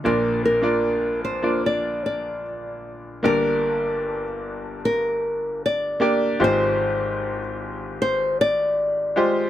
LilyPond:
<<
  \new Staff \with { instrumentName = "Nylon-string guitar" } { \time 4/4 \key g \phrygian \tempo 4 = 76 bes'8 bes'4 c''8 d''8 d''4. | bes'2 bes'4 d''4 | c''2 c''8 d''4. | }
  \new Staff \with { instrumentName = "Grand piano" } { \time 4/4 \key g \phrygian <bes d' f' d''>8 r16 <bes d' f' d''>8 r8 <bes d' f' d''>4~ <bes d' f' d''>16 r4 | <bes d' g' d''>4~ <bes d' g' d''>16 r2 r16 <bes d' g' d''>16 r16 | <aes f' g' c''>4~ <aes f' g' c''>16 r2 r16 <aes f' g' c''>16 r16 | }
  \new Staff \with { instrumentName = "Grand piano" } { \clef bass \time 4/4 \key g \phrygian <bes,, bes,>1 | <g,, g,>1 | <aes,, aes,>1 | }
>>